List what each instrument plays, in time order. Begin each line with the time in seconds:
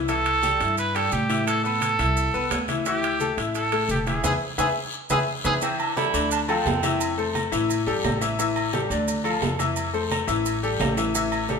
Already playing: upright bass C2
0.08 grand piano E3 E4 E5, trumpet A4, high conga, high timbale, long guiro, maracas
0.26 high conga, high timbale, maracas
0.43 grand piano G3 G4 G5, high conga, short guiro, maracas
0.60 upright bass G2, grand piano E4 E5 E6, high conga, high timbale, short guiro, maracas
0.77 trumpet B4, high conga, high timbale, long guiro, maracas
0.95 grand piano G3 G4 G5, trumpet A4, high conga, high timbale, maracas
1.12 upright bass A2, trumpet G4, high conga, short guiro, maracas
1.29 grand piano E3 E4 E5, high conga, high timbale, short guiro, maracas
1.47 trumpet A4, high timbale, long guiro, maracas
1.64 grand piano B3 B4 B5, trumpet A4, high conga, maracas
1.81 high conga, high timbale, short guiro, maracas
1.98 upright bass C2, grand piano E4 E5 E6, high conga, high timbale, short guiro, maracas
2.17 long guiro, maracas
2.34 upright bass C2, grand piano B3 B4 B5, maracas
2.51 upright bass D2, high conga, high timbale, low timbale, short guiro, maracas
2.68 grand piano E3 E4 E5, high conga, high timbale, short guiro, maracas
2.86 grand piano E3 E4 E5, trumpet G4, high timbale, long guiro, maracas
3.03 high conga, high timbale, maracas
3.20 grand piano A3 A4 A5, high conga, short guiro, maracas
3.37 upright bass A1, grand piano E4 E5 E6, high conga, high timbale, short guiro, maracas
3.55 trumpet A4, high conga, high timbale, long guiro, maracas
3.72 grand piano A3 A4 A5, high conga, high timbale, maracas
3.89 upright bass E1, trumpet G4, high conga, short guiro, maracas
4.06 grand piano E3 E4 E5, trumpet G#4, high conga, high timbale, short guiro, maracas
4.24 upright bass E2, grand piano G#4 B4 E5, trumpet G#4, high conga, high timbale, long guiro, maracas
4.58 upright bass E2, grand piano G#4 B4 E5, trumpet G#4, high conga, high timbale, long guiro, maracas
5.10 upright bass E2, grand piano G#4 B4 E5, trumpet G#4, high conga, high timbale, long guiro, maracas
5.44 upright bass E2, grand piano G#4 B4 E5, trumpet G#4, high conga, high timbale, long guiro, maracas
5.62 grand piano E3 E4 E5, baritone saxophone C4, high conga, low agogo, long guiro, maracas
5.80 baritone saxophone D4, high conga, low agogo, maracas
5.96 grand piano G3 G4 A4, baritone saxophone E4, high conga, low timbale, short guiro, maracas
6.14 upright bass D2, grand piano D3 D4 D5, high conga, low agogo, short guiro, maracas
6.31 baritone saxophone D4, high conga, low agogo, long guiro, maracas
6.48 grand piano F3 F4 A4, baritone saxophone C4, high conga, low agogo, maracas
6.65 upright bass F2, high conga, low timbale, short guiro, maracas
6.83 grand piano E3 E4 E5, high conga, low agogo, short guiro, maracas
7.00 high conga, low agogo, long guiro, maracas
7.18 grand piano A3 A4 C5, high conga, maracas
7.35 high conga, low timbale, low agogo, short guiro, maracas
7.52 upright bass A1, grand piano E3 E4 E5, high conga, short guiro, maracas
7.69 high conga, low agogo, long guiro, maracas
7.87 upright bass G1, grand piano G3 G4 A4, high conga, low agogo, maracas
8.04 upright bass A1, high conga, low timbale, low agogo, short guiro, maracas
8.21 grand piano E3 E4 E5, high conga, short guiro, maracas
8.39 grand piano E3 E4 E5, high conga, low agogo, long guiro, maracas
8.56 high conga, low agogo, maracas
8.73 grand piano G3 G4 A4, high conga, low timbale, short guiro, maracas
8.90 upright bass D2, grand piano D3 D4 D5, high conga, low agogo, short guiro, maracas
9.08 high conga, low agogo, long guiro, maracas
9.24 grand piano F3 F4 A4, high conga, low agogo, maracas
9.42 upright bass F2, high conga, low timbale, short guiro, maracas
9.59 grand piano E3 E4 E5, high conga, low agogo, short guiro, maracas
9.76 low agogo, long guiro, maracas
9.93 grand piano A3 A4 C5, high conga, maracas
10.11 high conga, low timbale, low agogo, short guiro, maracas
10.27 upright bass A1, grand piano E3 E4 E5, high conga, short guiro, maracas
10.45 high conga, low agogo, long guiro, maracas
10.62 grand piano G3 G4 A4, high conga, low agogo, maracas
10.79 upright bass A1, high conga, low timbale, low agogo, short guiro, maracas
10.97 grand piano E3 E4 E5, high conga, short guiro, maracas
11.14 grand piano E3 E4 E5, high conga, low agogo, long guiro, maracas
11.32 high conga, low agogo, maracas
11.49 grand piano G3 G4 A4, high conga, low timbale, short guiro, maracas